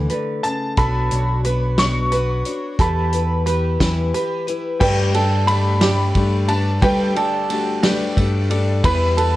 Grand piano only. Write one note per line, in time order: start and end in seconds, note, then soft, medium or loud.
4.80 6.79 G1 medium
4.80 6.78 G2 medium
4.80 5.08 G3 medium
4.80 5.08 A3 medium
4.80 5.09 D4 medium
4.80 5.08 A4 medium
5.13 5.41 G3 medium
5.13 5.42 A3 soft
5.13 5.42 D4 soft
5.13 5.42 B4 medium
5.46 5.75 G3 medium
5.46 5.75 A3 medium
5.46 5.75 D4 medium
5.46 5.75 G4 medium
5.81 6.09 G3 medium
5.81 6.09 A3 soft
5.81 6.10 D4 medium
5.81 6.10 A4 medium
6.16 6.43 G3 medium
6.16 6.44 A3 medium
6.16 6.44 D4 medium
6.16 6.44 A4 medium
6.48 6.76 G3 medium
6.48 6.76 A3 medium
6.48 6.76 D4 medium
6.48 6.77 B4 medium
6.81 8.80 G1 medium
6.81 8.80 G2 medium
6.81 7.10 G3 medium
6.81 7.10 A3 medium
6.81 7.10 D4 medium
6.81 7.10 A4 medium
7.15 7.43 G3 medium
7.15 7.44 A3 medium
7.15 7.44 D4 medium
7.15 7.44 A4 medium
7.49 7.77 G3 medium
7.49 7.77 A3 medium
7.49 7.78 D4 medium
7.49 7.78 F#4 medium
7.82 8.11 G3 medium
7.82 8.11 A3 medium
7.82 8.11 D4 medium
7.82 8.11 B4 medium
8.16 8.44 G3 medium
8.16 8.44 A3 medium
8.16 8.45 D4 medium
8.16 8.45 A4 medium
8.50 8.78 G3 medium
8.50 8.78 A3 medium
8.50 8.78 D4 medium
8.50 8.78 A4 medium
8.84 9.36 E2 medium
8.84 9.36 E3 medium
8.84 9.12 G3 medium
8.84 9.12 B3 medium
8.84 9.12 E4 medium
8.84 9.12 B4 loud
9.18 9.36 G3 medium
9.18 9.36 B3 medium
9.18 9.36 E4 medium
9.18 9.36 B4 medium